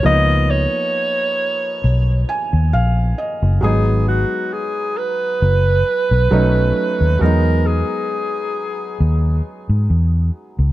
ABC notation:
X:1
M:4/4
L:1/16
Q:"Swing 16ths" 1/4=67
K:C#dor
V:1 name="Alto saxophone"
d2 c8 z6 | G2 F2 G2 B8- B2 | A2 G8 z6 |]
V:2 name="Felt piano"
z8 z2 g2 ^e2 d2 | z16 | z16 |]
V:3 name="Felt piano"
[^E,A,B,D]16 | [F,G,B,D]12 [F,=A,CD]4 | [F,G,B,D]16 |]
V:4 name="Fingered electric bass" clef=bass
C,,3 z4 z B,,,2 z D,, A,,,2 z F,,, | G,,,3 z4 z F,,,2 z B,,, B,,,2 z D,, | E,,3 z4 z D,,2 z G,, E,,2 z C,, |]